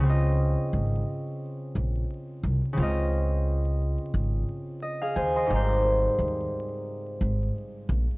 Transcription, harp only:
0.00 C#3 C4
0.06 F4 D#5
2.73 C#3 C4
2.79 F4 D#5
4.82 D#5
5.02 G#4 F5
5.16 C5 G#5
5.36 D#5 C6
5.46 G#2 G3
5.53 A#4 C5

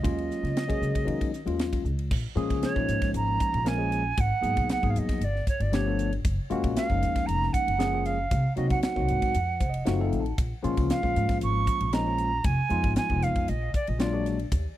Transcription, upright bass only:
0.05 D#2
0.43 C#3
0.81 C#3
1.07 D#3
1.46 D#2
1.84 C#2
2.11 A#1
2.36 A#2
2.50 C#2
2.76 A#1
2.88 G#2
3.14 G#1
3.40 muted upright bass stroke
3.53 A#1
4.18 G#1
4.43 G#2
4.57 B1
4.83 G#1
4.95 F2
5.21 G1
5.47 muted upright bass stroke
5.60 G1
6.25 F#1
6.51 F#2
6.64 A#1
6.90 F#1
7.02 D#2
7.28 F1
7.67 F#1
8.31 C2
8.57 C3
8.71 D#2
8.96 C2
9.10 G#2
9.35 F2
9.61 F1
9.87 F#1
10.12 A1
10.38 A#1
10.64 A#2
10.77 C#2
11.03 A#1
11.17 G#2
11.42 G#1
11.67 muted upright bass stroke
11.81 A#1
12.45 F1
12.71 F2
12.84 G#1
13.10 F1
13.22 F2
13.49 A#1
13.74 muted upright bass stroke
13.88 A#1
14.52 D#2

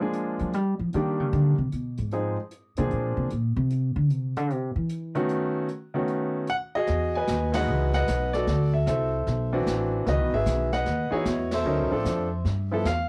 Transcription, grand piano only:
0.00 F3 G#3 A#3 D4 G#4
0.94 D#3 G3 A#3 D4 G4
2.13 F3 G#3 C4 D#4 G#4
2.78 F3 A#3 C4 D4 G#4
5.15 D#3 A3 B3 C#4 F#4
5.94 D#3 A3 B3 C#4 F#4
6.50 F#5
6.75 F#4 G#4 D#5
7.15 B4 D#5 G#5
7.52 E3 G#3 D#4 F#4 D#5 F#5
7.56 B4
7.94 B4 D#5 F#5
8.33 F#4 A4 D5
8.74 E5
8.88 A4 C5 E5
9.53 E3 C4 D4 F#4
10.05 D#3 E3 B3 F#4 B4 D#5
10.34 G#4 B4 E5
10.73 B4 D#5 F#5
11.11 E3 B3 D#4 E4 F#4 G#4 C#5
11.53 A4 C5 E5
11.66 F#3 C#4 D#4 A#4
11.91 F3 C4 D4 A4
12.71 F3 B3 E4 A4
12.86 F5

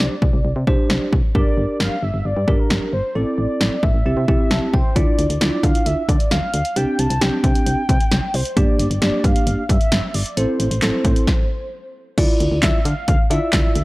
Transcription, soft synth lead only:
Already playing: D5
1.35 D5
1.80 F5
2.03 E5
2.25 D5
2.59 A#4
2.93 C5
3.16 D5
3.83 E5
4.74 C5
4.96 D5
5.41 D5
5.64 F5
5.86 E5
6.09 D5
6.31 F5
6.54 F5
6.76 G5
6.99 A5
7.21 G5
8.34 C5
8.57 D5
9.02 D5
9.24 F5
9.70 E5
10.15 D5
10.37 C5
12.63 E5
12.86 F5
13.08 F5
13.30 E5

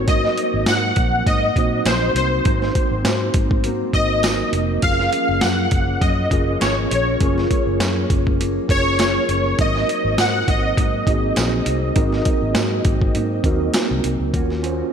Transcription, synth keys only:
0.08 D#5
0.68 F#5
1.27 D#5
1.87 C5
2.17 C5
3.94 D#5
4.83 F5
5.41 F#5
6.01 D#5
6.61 C#5
6.91 C#5
8.71 C#5
9.61 D#5
10.20 F#5
10.50 D#5

